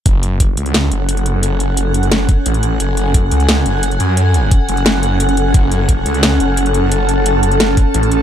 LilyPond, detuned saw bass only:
\new Staff \with { instrumentName = "Detuned saw bass" } { \clef bass \time 4/4 \key fis \minor \tempo 4 = 175 fis,,4. cis,4 fis,,4.~ | fis,,2~ fis,,8 r8 a,,8 a,,8 | fis,,4. cis,4 fis,,4 fis,8~ | fis,4 r8 fis,,2~ fis,,8 |
fis,,4. cis,4 fis,,4.~ | fis,,2~ fis,,8 r8 a,,8 a,,8 | }